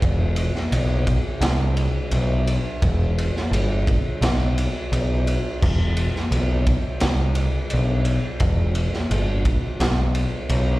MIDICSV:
0, 0, Header, 1, 3, 480
1, 0, Start_track
1, 0, Key_signature, 1, "minor"
1, 0, Tempo, 697674
1, 21, Time_signature, 4, 2, 24, 8
1, 7427, End_track
2, 0, Start_track
2, 0, Title_t, "Picked electric bass"
2, 0, Program_c, 0, 34
2, 20, Note_on_c, 0, 28, 100
2, 334, Note_off_c, 0, 28, 0
2, 495, Note_on_c, 0, 35, 99
2, 811, Note_off_c, 0, 35, 0
2, 969, Note_on_c, 0, 36, 96
2, 1287, Note_off_c, 0, 36, 0
2, 1457, Note_on_c, 0, 35, 100
2, 1773, Note_off_c, 0, 35, 0
2, 1948, Note_on_c, 0, 28, 102
2, 2260, Note_off_c, 0, 28, 0
2, 2416, Note_on_c, 0, 31, 97
2, 2732, Note_off_c, 0, 31, 0
2, 2898, Note_on_c, 0, 35, 93
2, 3214, Note_off_c, 0, 35, 0
2, 3384, Note_on_c, 0, 35, 97
2, 3697, Note_off_c, 0, 35, 0
2, 3869, Note_on_c, 0, 28, 97
2, 4181, Note_off_c, 0, 28, 0
2, 4341, Note_on_c, 0, 35, 99
2, 4656, Note_off_c, 0, 35, 0
2, 4833, Note_on_c, 0, 36, 92
2, 5143, Note_off_c, 0, 36, 0
2, 5320, Note_on_c, 0, 35, 105
2, 5628, Note_off_c, 0, 35, 0
2, 5786, Note_on_c, 0, 28, 98
2, 6099, Note_off_c, 0, 28, 0
2, 6266, Note_on_c, 0, 31, 95
2, 6578, Note_off_c, 0, 31, 0
2, 6741, Note_on_c, 0, 35, 96
2, 7055, Note_off_c, 0, 35, 0
2, 7220, Note_on_c, 0, 35, 102
2, 7427, Note_off_c, 0, 35, 0
2, 7427, End_track
3, 0, Start_track
3, 0, Title_t, "Drums"
3, 16, Note_on_c, 9, 36, 120
3, 18, Note_on_c, 9, 51, 112
3, 85, Note_off_c, 9, 36, 0
3, 87, Note_off_c, 9, 51, 0
3, 249, Note_on_c, 9, 51, 88
3, 318, Note_off_c, 9, 51, 0
3, 382, Note_on_c, 9, 38, 34
3, 451, Note_off_c, 9, 38, 0
3, 497, Note_on_c, 9, 51, 116
3, 565, Note_off_c, 9, 51, 0
3, 735, Note_on_c, 9, 51, 77
3, 737, Note_on_c, 9, 36, 89
3, 804, Note_off_c, 9, 51, 0
3, 806, Note_off_c, 9, 36, 0
3, 973, Note_on_c, 9, 51, 108
3, 980, Note_on_c, 9, 38, 121
3, 1042, Note_off_c, 9, 51, 0
3, 1049, Note_off_c, 9, 38, 0
3, 1216, Note_on_c, 9, 51, 77
3, 1285, Note_off_c, 9, 51, 0
3, 1454, Note_on_c, 9, 51, 106
3, 1523, Note_off_c, 9, 51, 0
3, 1702, Note_on_c, 9, 51, 77
3, 1770, Note_off_c, 9, 51, 0
3, 1942, Note_on_c, 9, 51, 106
3, 1943, Note_on_c, 9, 36, 117
3, 2010, Note_off_c, 9, 51, 0
3, 2011, Note_off_c, 9, 36, 0
3, 2190, Note_on_c, 9, 51, 77
3, 2259, Note_off_c, 9, 51, 0
3, 2315, Note_on_c, 9, 38, 35
3, 2384, Note_off_c, 9, 38, 0
3, 2430, Note_on_c, 9, 51, 111
3, 2498, Note_off_c, 9, 51, 0
3, 2665, Note_on_c, 9, 36, 93
3, 2669, Note_on_c, 9, 51, 78
3, 2734, Note_off_c, 9, 36, 0
3, 2737, Note_off_c, 9, 51, 0
3, 2905, Note_on_c, 9, 51, 110
3, 2912, Note_on_c, 9, 38, 117
3, 2973, Note_off_c, 9, 51, 0
3, 2981, Note_off_c, 9, 38, 0
3, 3149, Note_on_c, 9, 51, 85
3, 3218, Note_off_c, 9, 51, 0
3, 3389, Note_on_c, 9, 51, 106
3, 3458, Note_off_c, 9, 51, 0
3, 3627, Note_on_c, 9, 51, 73
3, 3696, Note_off_c, 9, 51, 0
3, 3869, Note_on_c, 9, 49, 102
3, 3870, Note_on_c, 9, 36, 126
3, 3938, Note_off_c, 9, 49, 0
3, 3939, Note_off_c, 9, 36, 0
3, 4105, Note_on_c, 9, 51, 87
3, 4174, Note_off_c, 9, 51, 0
3, 4238, Note_on_c, 9, 38, 32
3, 4307, Note_off_c, 9, 38, 0
3, 4347, Note_on_c, 9, 51, 112
3, 4416, Note_off_c, 9, 51, 0
3, 4586, Note_on_c, 9, 51, 79
3, 4588, Note_on_c, 9, 36, 90
3, 4654, Note_off_c, 9, 51, 0
3, 4657, Note_off_c, 9, 36, 0
3, 4818, Note_on_c, 9, 51, 107
3, 4825, Note_on_c, 9, 38, 126
3, 4887, Note_off_c, 9, 51, 0
3, 4894, Note_off_c, 9, 38, 0
3, 5058, Note_on_c, 9, 51, 91
3, 5127, Note_off_c, 9, 51, 0
3, 5297, Note_on_c, 9, 51, 104
3, 5366, Note_off_c, 9, 51, 0
3, 5537, Note_on_c, 9, 51, 72
3, 5606, Note_off_c, 9, 51, 0
3, 5777, Note_on_c, 9, 51, 112
3, 5782, Note_on_c, 9, 36, 115
3, 5846, Note_off_c, 9, 51, 0
3, 5851, Note_off_c, 9, 36, 0
3, 6019, Note_on_c, 9, 51, 76
3, 6088, Note_off_c, 9, 51, 0
3, 6148, Note_on_c, 9, 38, 38
3, 6217, Note_off_c, 9, 38, 0
3, 6266, Note_on_c, 9, 51, 113
3, 6335, Note_off_c, 9, 51, 0
3, 6502, Note_on_c, 9, 51, 77
3, 6505, Note_on_c, 9, 36, 89
3, 6570, Note_off_c, 9, 51, 0
3, 6574, Note_off_c, 9, 36, 0
3, 6743, Note_on_c, 9, 51, 100
3, 6751, Note_on_c, 9, 38, 119
3, 6812, Note_off_c, 9, 51, 0
3, 6820, Note_off_c, 9, 38, 0
3, 6981, Note_on_c, 9, 51, 82
3, 7050, Note_off_c, 9, 51, 0
3, 7220, Note_on_c, 9, 51, 108
3, 7289, Note_off_c, 9, 51, 0
3, 7427, End_track
0, 0, End_of_file